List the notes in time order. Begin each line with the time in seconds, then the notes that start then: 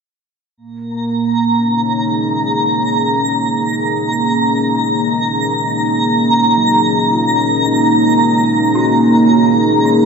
0.57 A#3 A#5
1.46 C#4
1.57 D#4
1.91 G#4
6.56 F#3
7.11 F4
7.66 D#4 A#5
8.75 F#4 C6
9.29 F#4